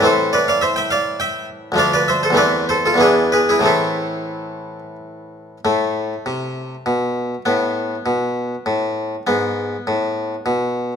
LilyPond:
<<
  \new Staff \with { instrumentName = "Harpsichord" } { \time 3/4 \key a \minor \tempo 4 = 99 <a' c''>8 <b' d''>16 <d'' f''>16 <c'' e''>16 <e'' g''>16 <d'' f''>8 <e'' g''>8 r8 | <d'' f''>16 <b' d''>16 <c'' e''>16 <a' c''>16 <b' d''>8 <a' c''>16 <f' a'>16 <e' gis'>8 <gis' b'>16 <e' gis'>16 | <e' a'>2 r4 | a2. |
b2. | b2. | }
  \new Staff \with { instrumentName = "Harpsichord" } { \clef bass \time 3/4 \key a \minor <a, e a c'>2. | <d, f a d'>4 <e, e a c'>4 <e, e b d'>4 | <a, e a c'>2. | a,4 c4 b,4 |
a,4 b,4 a,4 | gis,4 a,4 b,4 | }
>>